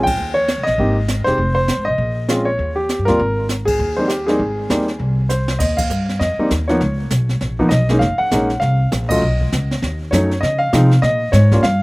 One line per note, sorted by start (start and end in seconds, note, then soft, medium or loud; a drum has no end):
0.00 0.15 A#1 medium
0.00 0.36 G5 loud
0.07 kick medium
0.07 ride medium
0.17 0.55 D#2 medium
0.17 brush sweep soft
0.34 0.66 C#5 loud
0.48 snare medium
0.48 hi-hat pedal soft
0.58 0.67 C#2 medium
0.63 1.21 D#5 loud
0.63 snare soft
0.67 0.77 A#1 medium
0.78 1.23 G#1 medium
0.78 0.95 A#3 medium
0.78 0.95 C4 medium
0.78 0.96 D#4 medium
0.78 0.96 G4 medium
0.78 brush sweep soft
0.78 kick soft
1.08 snare medium
1.08 hi-hat pedal medium
1.24 1.37 E1 medium
1.24 1.37 G#3 soft
1.24 1.37 C4 soft
1.24 1.37 D#4 soft
1.24 1.37 G4 medium
1.24 1.53 C5 loud
1.24 snare soft
1.38 1.75 F1 medium
1.38 brush sweep soft
1.38 kick soft
1.55 1.87 C5 loud
1.68 snare medium
1.68 hi-hat pedal medium
1.77 1.87 G#1 soft
1.85 1.98 B1 medium
1.85 2.48 D#5 medium
1.98 2.55 A#1 medium
1.98 brush sweep soft
1.98 kick soft
2.29 2.45 G#3 medium
2.29 2.45 C4 medium
2.29 2.46 C#4 medium
2.29 2.46 F4 medium
2.29 snare medium
2.29 hi-hat pedal medium
2.45 2.74 C#5 medium
2.59 2.96 D#2 medium
2.59 brush sweep soft
2.59 kick soft
2.76 3.07 G4 medium
2.89 snare medium
2.89 hi-hat pedal medium
2.99 3.08 G2 medium
3.05 3.18 D#2 medium
3.05 3.18 G3 medium
3.05 3.18 A#3 medium
3.05 3.18 C4 medium
3.05 3.18 F4 medium
3.05 3.45 A#4 loud
3.05 snare soft
3.19 3.76 G#1 medium
3.19 brush sweep soft
3.19 kick soft
3.49 snare medium
3.49 hi-hat pedal medium
3.65 3.97 G#4 medium
3.65 kick medium
3.65 ride medium
3.79 4.36 D#2 medium
3.79 brush sweep soft
3.97 4.08 G3 medium
3.97 4.08 A#3 soft
3.97 4.09 C4 medium
3.97 4.09 D#4 medium
3.97 4.09 C5 medium
4.08 4.26 G4 medium
4.08 snare medium
4.08 hi-hat pedal medium
4.26 4.38 G3 medium
4.26 4.38 A#3 medium
4.26 4.39 C4 medium
4.26 4.39 D#4 medium
4.26 5.25 G#4 medium
4.26 snare soft
4.39 4.67 G#1 medium
4.39 brush sweep soft
4.39 kick soft
4.69 4.97 D#2 medium
4.69 4.86 G3 medium
4.69 4.86 A#3 medium
4.69 4.86 C4 medium
4.69 4.87 D#4 medium
4.69 snare medium
4.69 hi-hat pedal medium
4.88 snare soft
4.99 5.57 C2 medium
4.99 brush sweep soft
4.99 kick soft
5.29 5.60 C5 medium
5.29 snare soft
5.29 hi-hat pedal medium
5.48 snare medium
5.59 5.89 D#2 medium
5.59 5.78 D#5 medium
5.59 brush sweep soft
5.59 kick medium
5.59 snare soft
5.59 crash medium
5.77 6.21 F5 medium
5.77 kick medium
5.77 crash medium
5.90 6.19 G2 medium
5.90 hi-hat pedal medium
6.09 snare soft
6.19 6.37 F2 medium
6.19 6.48 D#5 medium
6.19 brush sweep soft
6.19 kick soft
6.19 snare soft
6.38 6.49 G3 medium
6.38 6.49 A#3 medium
6.38 6.49 C4 medium
6.38 6.50 D#4 medium
6.38 muted upright bass stroke soft
6.51 6.80 D#2 medium
6.51 kick soft
6.51 snare medium
6.51 hi-hat pedal medium
6.68 6.79 F3 medium
6.68 6.80 A#3 medium
6.68 6.80 B3 medium
6.68 6.80 D#4 medium
6.68 7.55 C#5 medium
6.68 snare soft
6.81 7.10 C#2 medium
6.81 brush sweep soft
6.81 kick soft
6.81 snare soft
7.10 7.40 B1 medium
7.10 kick soft
7.10 snare medium
7.10 hi-hat pedal medium
7.29 snare soft
7.41 7.70 A#1 medium
7.41 brush sweep soft
7.41 kick soft
7.41 snare soft
7.59 7.70 F3 medium
7.59 7.70 A#3 medium
7.59 7.70 B3 medium
7.59 7.70 D#4 medium
7.59 kick medium
7.69 8.00 B1 medium
7.69 7.98 D#5 medium
7.69 kick soft
7.69 snare medium
7.69 hi-hat pedal medium
7.89 8.00 G#3 medium
7.89 8.00 A#3 medium
7.89 8.00 C#4 medium
7.89 8.00 D#4 medium
7.89 snare soft
7.99 8.18 F#1 medium
7.99 8.19 F5 medium
7.99 brush sweep soft
7.99 kick soft
7.99 snare soft
8.18 8.62 F#5 medium
8.18 muted upright bass stroke soft
8.31 8.60 A#1 medium
8.31 8.48 G#3 medium
8.31 8.48 A#3 medium
8.31 8.48 C#4 medium
8.31 8.49 D#4 medium
8.31 kick soft
8.31 snare medium
8.31 hi-hat pedal medium
8.50 snare soft
8.60 8.91 C2 medium
8.60 8.88 F5 loud
8.60 brush sweep soft
8.60 kick soft
8.60 snare soft
8.92 9.21 A#1 medium
8.92 kick soft
8.92 snare medium
8.92 hi-hat pedal medium
9.09 9.21 F#3 medium
9.09 9.21 A3 medium
9.09 9.21 C#4 medium
9.09 9.21 F4 medium
9.09 9.96 D#5 medium
9.09 kick medium
9.09 crash medium
9.22 9.51 B1 medium
9.22 brush sweep medium
9.41 kick medium
9.52 9.81 C#2 medium
9.52 kick soft
9.52 snare medium
9.52 hi-hat pedal medium
9.71 snare soft
9.82 10.11 D#2 medium
9.82 brush sweep medium
9.82 kick soft
9.82 snare soft
10.11 10.41 F#2 medium
10.11 10.29 F#3 medium
10.11 10.29 A3 medium
10.11 10.29 C#4 medium
10.11 10.30 D#4 medium
10.11 10.40 C#5 medium
10.11 kick soft
10.11 snare medium
10.11 hi-hat pedal medium
10.31 snare soft
10.41 10.72 C#3 medium
10.41 10.59 D#5 medium
10.41 brush sweep soft
10.41 kick soft
10.41 snare soft
10.59 11.03 F5 loud
10.73 11.02 C3 medium
10.73 10.89 F3 medium
10.73 10.89 G#3 medium
10.73 10.89 C4 medium
10.73 10.90 D#4 medium
10.73 kick soft
10.73 snare medium
10.73 hi-hat pedal medium
10.91 snare soft
11.02 11.32 A#2 medium
11.02 11.34 D#5 loud
11.02 brush sweep soft
11.02 kick soft
11.02 snare soft
11.32 11.62 G#2 loud
11.32 11.64 C#5 medium
11.32 snare medium
11.32 hi-hat pedal medium
11.51 11.62 G3 medium
11.51 11.62 A#3 medium
11.51 11.63 C#4 medium
11.51 11.63 F4 medium
11.51 kick medium
11.51 snare soft
11.63 11.83 G2 medium
11.63 11.82 F5 loud
11.63 brush sweep soft
11.63 snare soft